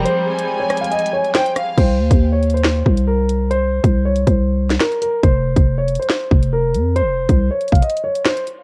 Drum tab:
CC |------------------------------------------------|x-----------------------------------------------|------------------------------------------------|------------------------------------------------|
HH |x--------x--------x-x-x-x-x-x----x--x--x--x-----|x--------x--------x-x-x----------x--------x-----|x--------x--------x--x-----------x--x--x--x-----|x--------x--------x-x-x----------x--------x-----|
SD |------------------r-----------------o-----r-----|------------------------o-----------------------|---------------------------------o--o-----------|------------------------o-----------------------|
BD |------------------------------------------------|o--------o--------------------o-----------------|---------o-----------o--------------------------|o--------o--------------------o-----------------|

CC |------------------------------------------------|
HH |x--------x--------x-x-x-x-x-x----x--x--x--x-----|
SD |------------------------------------o-----------|
BD |---------o-----------o--------------------------|